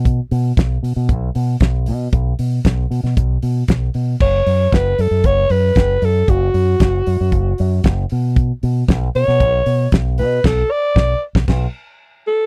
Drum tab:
CC |----------------|----------------|x---------------|----------------|
HH |x-o-x-o-x-o-x-o-|x-o-x-o-x-o-x-o-|--o-x-o-x-o-x-o-|x-o-x-o-x-o-x-o-|
SD |----o-------o---|----o--o----o---|----o-------o---|----o-------o---|
BD |o---o---o---o---|o---o---o---o---|o---o---o---o---|o---o---o---o---|

CC |----------------|x-------x-------|
HH |x-o-x-o-x-o-x-o-|----------------|
SD |----o--o----o---|o---o--oo-------|
BD |o---o---o---o---|o---o--oo-------|